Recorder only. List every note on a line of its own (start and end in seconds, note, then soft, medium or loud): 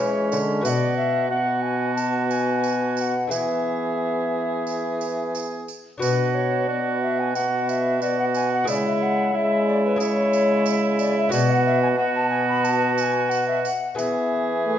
0.00 0.38 C#5 medium
0.64 0.70 E5 medium
0.69 0.97 D5 loud
0.97 1.29 E5 medium
1.30 1.63 F#5 medium
1.62 1.95 G#5 medium
1.95 2.29 A5 medium
2.29 2.96 G#5 loud
2.96 3.02 G#5 medium
3.01 3.32 F#5 medium
3.31 5.34 E5 medium
6.02 6.36 B4 medium
6.34 6.69 C#5 medium
6.67 7.01 D5 medium
7.02 7.21 E5 medium
7.20 7.37 G#5 medium
7.36 7.71 F#5 medium
7.69 8.02 E5 medium
8.02 8.18 D5 medium
8.19 8.25 F#5 medium
8.35 8.51 G#5 medium
8.53 8.68 F#5 medium
8.69 8.75 D5 loud
8.87 9.04 E5 medium
9.03 9.37 F#5 medium
9.35 9.67 E5 medium
9.68 9.84 D5 medium
9.86 10.00 B4 medium
10.00 10.74 C#5 loud
11.00 11.16 D5 loud
11.18 11.31 E5 loud
11.31 11.52 D5 loud
11.50 11.65 F#5 loud
11.66 11.82 E5 loud
11.82 11.88 G#5 loud
11.97 12.14 F#5 loud
12.15 12.29 A5 loud
12.30 12.47 G#5 loud
12.48 12.66 B5 loud
12.64 12.98 A5 loud
12.98 13.31 G#5 loud
12.98 13.02 A5 loud
13.29 13.47 F#5 loud
13.48 13.63 E5 medium
13.64 13.97 F#5 loud
13.97 14.79 E5 medium